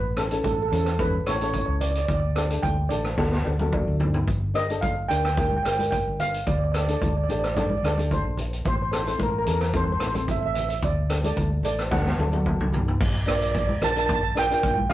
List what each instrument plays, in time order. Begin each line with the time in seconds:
Already playing: fingered electric bass A1, steel pan B4
0.16 nylon-string guitar C#4 E4 A4, cross-stick, closed hi-hat
0.31 nylon-string guitar C#4 E4 A4, closed hi-hat
0.44 fingered electric bass A1, steel pan A4, kick, closed hi-hat, high conga
0.53 steel pan A4
0.62 steel pan A4
0.68 fingered electric bass E2, nylon-string guitar C#4 E4, steel pan A4, closed hi-hat, low conga
0.73 nylon-string guitar A4, steel pan A4
0.84 steel pan A4, cross-stick, closed hi-hat
0.98 nylon-string guitar C#4 E4 A4, steel pan B4, kick, closed hi-hat, high conga
1.13 high conga
1.26 fingered electric bass A1, nylon-string guitar C#4 E4 A4, steel pan C#5, cross-stick, closed hi-hat
1.36 steel pan C#5
1.41 nylon-string guitar C#4 E4 A4, steel pan C#5, closed hi-hat
1.50 steel pan C#5
1.54 kick, closed hi-hat, low conga
1.58 steel pan C#5
1.66 fingered electric bass C#2, steel pan C#5
1.81 steel pan D5, closed hi-hat, low conga
1.91 steel pan D5
1.95 steel pan D5, closed hi-hat
2.06 fingered electric bass D2, steel pan D5, kick, closed hi-hat
2.14 steel pan D5
2.20 steel pan D5
2.35 nylon-string guitar D4 G4 A4, steel pan D5, cross-stick, closed hi-hat
2.50 nylon-string guitar D4 G4 A4, closed hi-hat
2.63 fingered electric bass D2, steel pan G5, kick, closed hi-hat, high conga
2.89 fingered electric bass A1, nylon-string guitar D4 G4 A4, steel pan D5, closed hi-hat, low conga
3.05 cross-stick, closed hi-hat
3.17 fingered electric bass D2, nylon-string guitar D4 F#4 A4, kick, snare
3.32 snare
3.44 fingered electric bass D2, nylon-string guitar D4 F#4 A4
3.59 nylon-string guitar D4 F#4 A4, high tom, high conga
3.72 nylon-string guitar D5, kick, mid tom
3.88 fingered electric bass D2
4.00 nylon-string guitar C5, floor tom, low conga
4.14 floor tom
4.28 fingered electric bass G1, kick, closed hi-hat, low conga
4.54 nylon-string guitar D4 G4 A#4, steel pan D#5, cross-stick, closed hi-hat
4.70 nylon-string guitar D4 G4 A4, closed hi-hat
4.81 fingered electric bass G1, steel pan F5, kick, closed hi-hat, high conga
5.09 fingered electric bass D2, nylon-string guitar D4 G4 A#4, steel pan G5, closed hi-hat, low conga
5.25 steel pan G5, cross-stick, closed hi-hat
5.33 steel pan G5
5.37 nylon-string guitar D4 G4 A#4, steel pan G5, kick, closed hi-hat, high conga
5.49 steel pan G5, high conga
5.57 steel pan G5
5.63 fingered electric bass G1, nylon-string guitar D4 G4 A#4, steel pan G5, cross-stick, closed hi-hat
5.71 steel pan G5
5.77 nylon-string guitar D4 G4 A#4, steel pan G5, closed hi-hat, high conga
5.91 steel pan G5, kick, closed hi-hat, low conga
6.07 fingered electric bass G1
6.20 steel pan F5, closed hi-hat, low conga
6.34 closed hi-hat
6.47 fingered electric bass D2, steel pan D5, kick, closed hi-hat, low conga
6.58 steel pan D5
6.64 steel pan D5
6.72 nylon-string guitar D4 G4, steel pan D5, cross-stick, closed hi-hat
6.76 nylon-string guitar A4, steel pan D5
6.88 nylon-string guitar D4 G4 A4, steel pan D5, closed hi-hat
6.94 steel pan D5
7.01 fingered electric bass D2, steel pan D5, kick, closed hi-hat, high conga
7.09 steel pan D5
7.17 steel pan D5
7.24 steel pan D5
7.29 fingered electric bass A1, nylon-string guitar D4 G4 A4, steel pan D5, closed hi-hat, low conga
7.39 steel pan D5
7.44 steel pan D5, cross-stick, closed hi-hat
7.55 nylon-string guitar D4 G4 A4, steel pan D5, kick, cross-stick, closed hi-hat, high conga
7.62 steel pan D5
7.70 steel pan D5, high conga
7.78 steel pan D5
7.83 fingered electric bass D2, nylon-string guitar D4 G4 A4, steel pan D5, cross-stick, closed hi-hat
7.92 steel pan D5
7.97 nylon-string guitar D4 G4 A4, closed hi-hat, high conga
8.11 steel pan C5, kick, closed hi-hat, low conga
8.24 fingered electric bass A#1
8.37 closed hi-hat, low conga
8.53 closed hi-hat
8.65 fingered electric bass A1, steel pan C5, kick, closed hi-hat, low conga
8.76 steel pan C5
8.82 steel pan C5
8.91 nylon-string guitar C4 E4 A4, steel pan C5, cross-stick, closed hi-hat
9.00 steel pan C5
9.07 nylon-string guitar C4 E4 A4, steel pan C5, closed hi-hat
9.19 fingered electric bass A1, steel pan A#4, kick, closed hi-hat, high conga
9.30 steel pan A#4
9.38 steel pan A#4
9.45 fingered electric bass E2, nylon-string guitar C4 E4 A4, steel pan A#4, closed hi-hat, low conga
9.54 steel pan A#4
9.61 steel pan A#4, cross-stick, closed hi-hat
9.73 nylon-string guitar C4 E4 A4, steel pan C5, kick, closed hi-hat, high conga
9.85 steel pan C5, high conga
9.92 steel pan C5
10.00 fingered electric bass A1, nylon-string guitar C4 E4 A4, steel pan C5, cross-stick, closed hi-hat
10.07 steel pan C5
10.14 nylon-string guitar C4 E4 A4, steel pan C5, closed hi-hat, high conga
10.28 steel pan E5, kick, closed hi-hat, low conga
10.41 fingered electric bass A1, steel pan E5
10.46 steel pan E5
10.54 steel pan E5, closed hi-hat, low conga
10.61 steel pan E5
10.69 steel pan E5, closed hi-hat
10.82 fingered electric bass D2, steel pan D5, kick, closed hi-hat, low conga
11.09 nylon-string guitar D4 G4 A4, cross-stick, closed hi-hat
11.23 nylon-string guitar D4 G4 A4, steel pan D5, closed hi-hat, high conga
11.36 fingered electric bass D2, kick, closed hi-hat, high conga
11.63 fingered electric bass A1, nylon-string guitar D4 G4 A4, steel pan D5, closed hi-hat, low conga
11.79 cross-stick, closed hi-hat
11.91 fingered electric bass D2, nylon-string guitar D4 F#4 A4, steel pan F#5, kick, snare, high conga
12.06 snare, high conga
12.18 fingered electric bass D2, nylon-string guitar D4 F#4 A4, high tom
12.32 nylon-string guitar D4 F#4 A4, high tom, high conga
12.45 kick, mid tom, low conga
12.59 fingered electric bass C2, mid tom
12.72 floor tom, low conga
12.88 floor tom
13.01 fingered electric bass A#1, kick, crash
13.26 fingered electric bass A#1, nylon-string guitar D4 F4 A#4, steel pan D5, cross-stick, closed hi-hat
13.36 steel pan D5
13.42 steel pan D5, closed hi-hat
13.52 steel pan D5, kick, closed hi-hat
13.59 steel pan D5
13.67 steel pan D5, high conga
13.81 fingered electric bass A#1, nylon-string guitar D4 F4 A#4, steel pan A5, cross-stick, closed hi-hat, low conga
13.92 steel pan A5
13.96 nylon-string guitar D4 F4 A#4, steel pan A5, closed hi-hat
14.06 steel pan A5, kick, closed hi-hat
14.14 steel pan A5
14.23 steel pan A5
14.35 nylon-string guitar D4 F4 A#4, steel pan G5, cross-stick, closed hi-hat
14.46 steel pan G5
14.50 nylon-string guitar D4 F4 A#4, steel pan G5, closed hi-hat
14.59 steel pan G5
14.63 fingered electric bass A#1, steel pan G5, kick, closed hi-hat
14.74 steel pan G5, high conga
14.90 nylon-string guitar D4, steel pan F5, high conga, low conga